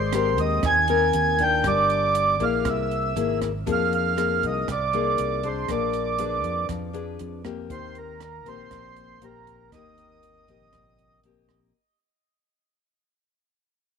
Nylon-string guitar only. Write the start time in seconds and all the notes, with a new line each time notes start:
Already playing: G#3
0.13 C4 G4 A#4
0.63 D#3
0.89 C4 A#4
1.40 D4 F4 A#4
1.66 G3
2.40 A#3 E4 G#4
2.65 C3
3.16 A#3 E4 G#4
3.66 F3 A#3 D#4 G#4
4.16 A#3 D#4 G#4
4.68 C3
4.94 A#3 D#4 G#4
5.43 D4 G#4
5.69 A#3
6.19 D4 G#4 B4
6.69 F3
6.93 D4 G#4 B4
7.44 A#3 C4 G4
7.70 D#3
8.46 A#3 C4 G4
8.71 A#2
9.22 A#3 C4 G4
9.73 D#3 A#3 C4 G4
10.49 A#3 C4 G4
10.74 A#2
11.25 A#3 C4 G4